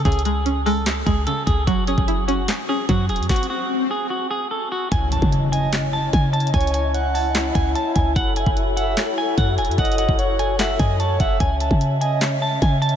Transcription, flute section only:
0, 0, Header, 1, 2, 480
1, 0, Start_track
1, 0, Key_signature, 4, "minor"
1, 0, Tempo, 405405
1, 62, Time_signature, 4, 2, 24, 8
1, 15345, End_track
2, 0, Start_track
2, 0, Title_t, "Flute section"
2, 0, Program_c, 0, 73
2, 5820, Note_on_c, 0, 61, 83
2, 5820, Note_on_c, 0, 73, 79
2, 5820, Note_on_c, 0, 75, 80
2, 5821, Note_on_c, 0, 64, 95
2, 9622, Note_off_c, 0, 61, 0
2, 9622, Note_off_c, 0, 75, 0
2, 9661, Note_on_c, 0, 66, 85
2, 13454, Note_off_c, 0, 64, 0
2, 13463, Note_off_c, 0, 66, 0
2, 13500, Note_on_c, 0, 61, 85
2, 13500, Note_on_c, 0, 75, 78
2, 13500, Note_on_c, 0, 76, 92
2, 15345, Note_off_c, 0, 61, 0
2, 15345, Note_off_c, 0, 73, 0
2, 15345, Note_off_c, 0, 75, 0
2, 15345, Note_off_c, 0, 76, 0
2, 15345, End_track
0, 0, End_of_file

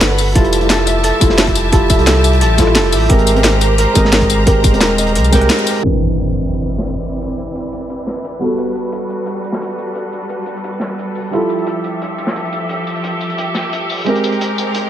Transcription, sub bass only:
0, 0, Header, 1, 2, 480
1, 0, Start_track
1, 0, Key_signature, 0, "major"
1, 0, Tempo, 342857
1, 496, Time_signature, 4, 2, 24, 8
1, 20856, End_track
2, 0, Start_track
2, 0, Title_t, "Sub bass"
2, 0, Program_c, 0, 38
2, 13, Note_on_c, 0, 31, 84
2, 476, Note_off_c, 0, 31, 0
2, 496, Note_on_c, 0, 29, 100
2, 1561, Note_off_c, 0, 29, 0
2, 1696, Note_on_c, 0, 29, 91
2, 2398, Note_off_c, 0, 29, 0
2, 2417, Note_on_c, 0, 29, 102
2, 2761, Note_off_c, 0, 29, 0
2, 2781, Note_on_c, 0, 36, 80
2, 3376, Note_on_c, 0, 33, 84
2, 3397, Note_off_c, 0, 36, 0
2, 3855, Note_on_c, 0, 29, 106
2, 3876, Note_off_c, 0, 33, 0
2, 4095, Note_on_c, 0, 33, 90
2, 4116, Note_off_c, 0, 29, 0
2, 4313, Note_off_c, 0, 33, 0
2, 4338, Note_on_c, 0, 32, 101
2, 5402, Note_off_c, 0, 32, 0
2, 5537, Note_on_c, 0, 32, 93
2, 6238, Note_off_c, 0, 32, 0
2, 6256, Note_on_c, 0, 32, 99
2, 6601, Note_off_c, 0, 32, 0
2, 6621, Note_on_c, 0, 27, 81
2, 7216, Note_on_c, 0, 36, 84
2, 7237, Note_off_c, 0, 27, 0
2, 7678, Note_off_c, 0, 36, 0
2, 20856, End_track
0, 0, End_of_file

